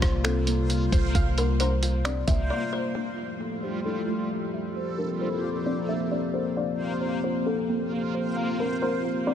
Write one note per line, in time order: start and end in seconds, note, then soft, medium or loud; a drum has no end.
0.00 0.89 C2 loud
0.00 2.92 C3 medium
0.00 2.92 G3 medium
0.00 2.91 A#3 medium
0.00 2.92 A#3 medium
0.00 2.91 F4 medium
0.00 1.38 F4 medium
0.00 0.91 C5 medium
0.00 2.92 C5 medium
0.00 0.24 C5 medium
0.00 0.70 F5 loud
0.00 kick loud
0.00 cross-stick loud
0.00 closed hi-hat medium
0.24 1.60 C4 medium
0.24 1.11 A4 medium
0.24 finger snap loud
0.24 closed hi-hat medium
0.47 1.83 A#3 medium
0.47 closed hi-hat medium
0.70 closed hi-hat medium
0.92 1.14 C2 loud
0.92 2.28 C5 medium
0.92 kick loud
0.92 closed hi-hat medium
1.15 2.24 C2 loud
1.15 2.50 F5 loud
1.15 kick loud
1.15 closed hi-hat medium
1.38 1.59 A#4 medium
1.38 closed hi-hat medium
1.60 2.95 A#4 medium
1.60 2.03 C5 medium
1.60 closed hi-hat medium
1.83 2.96 F4 medium
1.83 closed hi-hat medium
2.05 2.96 C4 medium
2.05 2.26 D5 medium
2.05 finger snap loud
2.05 closed hi-hat medium
2.27 2.50 C2 loud
2.27 2.95 A#3 medium
2.27 2.49 E5 medium
2.27 kick loud
2.27 closed hi-hat medium
2.50 2.72 D5 medium
2.73 2.94 C5 medium
2.73 2.96 C5 medium
2.95 9.34 F3 medium
2.95 4.74 G3 medium
2.95 4.74 A3 medium
2.95 4.74 E4 medium
2.95 9.34 F4 medium
2.95 6.53 G4 medium
2.95 6.53 A4 medium
2.95 3.59 D5 medium
2.95 4.74 E5 medium
2.95 4.31 G5 loud
3.40 4.76 A4 medium
3.63 4.76 G4 medium
3.63 3.84 C5 medium
3.85 4.76 E4 medium
3.85 4.72 A4 medium
4.08 4.76 A3 medium
4.54 4.76 E5 medium
4.76 9.34 A#3 medium
4.76 9.34 C4 medium
4.76 6.55 G4 medium
4.76 6.55 A4 medium
4.76 9.34 C5 medium
4.76 6.11 C5 loud
4.98 5.20 A#4 medium
5.21 6.57 A4 medium
5.21 5.64 C5 medium
5.44 6.56 F4 medium
5.66 6.57 C4 medium
5.66 5.88 D5 medium
5.88 6.56 A#3 medium
5.88 6.10 E5 medium
6.11 6.33 D5 medium
6.34 6.56 A#4 medium
6.34 6.55 C5 medium
6.56 9.34 G4 medium
6.56 7.20 D5 medium
6.56 7.92 F5 loud
7.01 8.13 C5 medium
7.24 8.59 F4 medium
7.24 7.45 C5 medium
7.46 8.82 C4 medium
7.46 8.33 A4 medium
7.69 9.05 A#3 medium
8.14 9.34 C5 medium
8.37 9.34 F5 loud
8.60 8.81 A#4 medium
8.82 9.34 A#4 medium
8.82 9.25 C5 medium
9.05 9.34 F4 medium
9.27 9.34 C4 medium
9.27 9.34 D5 medium